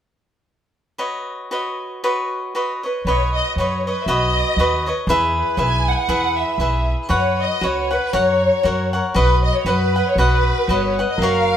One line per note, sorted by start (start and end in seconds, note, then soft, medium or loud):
0.98 1.51 F#4 medium
0.98 1.51 B4 medium
0.98 1.52 C#5 medium
0.98 1.52 D#5 medium
1.51 2.03 F#4 medium
1.51 2.03 B4 soft
1.51 2.03 C#5 soft
1.51 2.04 D#5 soft
2.04 2.54 F#4 medium
2.04 2.55 B4 medium
2.04 2.55 C#5 medium
2.04 2.56 D#5 medium
2.55 2.82 F#4 medium
2.55 2.82 B4 soft
2.55 2.82 C#5 medium
2.55 2.82 D#5 medium
2.83 3.06 B4 soft
2.83 3.06 C#5 soft
2.83 3.05 D#5 soft
3.05 3.38 B1 medium
3.05 3.57 F#4 medium
3.05 3.59 B4 medium
3.05 3.32 C#5 medium
3.05 3.58 C#5 medium
3.05 3.58 D#5 medium
3.35 3.55 D#5 medium
3.56 3.89 F#2 medium
3.56 3.85 F#4 medium
3.56 3.86 B4 medium
3.56 3.83 C#5 medium
3.60 3.86 C#5 medium
3.60 3.86 D#5 medium
3.87 4.08 B4 soft
3.87 4.03 B4 medium
3.87 4.08 C#5 soft
3.87 4.07 D#5 soft
4.03 4.40 B1 medium
4.03 4.08 E5 medium
4.08 4.58 F#4 medium
4.08 4.60 B4 medium
4.08 4.58 C#5 medium
4.08 4.59 D#5 medium
4.14 4.89 D#5 medium
4.56 4.90 D#2 medium
4.56 4.86 F#4 medium
4.56 4.87 B4 medium
4.56 4.86 C#5 medium
4.61 4.85 D#5 medium
4.86 5.08 B4 soft
4.86 5.09 C#5 soft
4.86 5.09 D#5 soft
5.07 5.40 E2 medium
5.07 5.57 E4 medium
5.07 5.56 G#4 medium
5.07 5.58 B4 medium
5.07 5.58 E5 medium
5.37 5.58 B4 medium
5.57 5.91 B1 medium
5.57 6.07 E4 medium
5.57 6.08 G#4 soft
5.57 6.09 B4 medium
5.57 6.09 E5 medium
5.57 5.86 G#5 medium
5.88 5.94 F#5 medium
5.93 5.99 G#5 medium
5.98 6.37 F#5 medium
6.08 6.42 E2 medium
6.08 6.58 E4 medium
6.08 6.59 G#4 medium
6.08 6.59 B4 medium
6.08 6.60 E5 medium
6.38 6.89 E5 medium
6.58 6.92 B1 medium
6.58 7.09 E4 soft
6.58 7.09 G#4 soft
6.58 7.07 B4 soft
6.58 7.10 E5 medium
7.09 7.44 F#2 medium
7.09 7.61 F#4 medium
7.09 7.62 B4 medium
7.09 7.63 C#5 medium
7.09 7.63 F#5 medium
7.13 7.39 C#5 medium
7.42 7.65 D#5 medium
7.61 7.96 C#2 medium
7.61 7.91 F#4 medium
7.61 7.92 B4 medium
7.61 7.90 C#5 medium
7.61 7.89 F#5 medium
7.65 7.93 C#5 medium
7.91 8.13 B4 soft
7.91 8.16 B4 medium
7.91 8.12 C#5 soft
7.91 8.13 F#5 soft
8.13 8.47 F#2 medium
8.13 8.63 F#4 medium
8.13 8.64 A#4 medium
8.13 8.64 C#5 medium
8.13 8.94 C#5 medium
8.13 8.65 F#5 medium
8.63 8.98 F#2 medium
8.63 8.93 F#4 medium
8.63 8.94 A#4 medium
8.63 8.93 C#5 medium
8.63 8.92 F#5 medium
8.93 9.15 A#4 soft
8.93 9.16 C#5 soft
8.93 9.15 F#5 soft
9.14 9.48 B1 medium
9.14 9.65 F#4 medium
9.14 9.65 B4 medium
9.14 9.42 B4 medium
9.14 9.65 D#5 medium
9.14 9.67 F#5 medium
9.44 9.55 D#5 medium
9.56 9.67 C#5 medium
9.65 9.98 F#2 medium
9.65 9.94 F#4 medium
9.65 9.95 B4 medium
9.65 10.07 B4 medium
9.65 9.95 D#5 medium
9.65 9.95 F#5 medium
9.96 10.17 B4 soft
9.96 10.19 D#5 soft
9.96 10.18 F#5 soft
10.09 10.19 C#5 medium
10.15 10.49 B1 medium
10.15 10.68 F#4 medium
10.15 10.68 B4 medium
10.15 10.69 F#5 medium
10.20 10.94 B4 medium
10.20 10.69 D#5 medium
10.68 11.02 G1 medium
10.68 10.97 F#4 soft
10.68 10.97 B4 medium
10.68 11.07 C#5 medium
10.68 10.98 D#5 medium
10.68 10.98 F#5 medium
10.99 11.22 B4 soft
10.99 11.22 D#5 soft
10.99 11.21 F#5 soft
11.11 11.21 D#5 medium
11.18 11.52 F#1 medium
11.18 11.57 A#4 medium
11.22 11.57 F#4 medium
11.22 11.57 A#4 medium
11.22 11.57 C#5 medium
11.22 11.57 F5 medium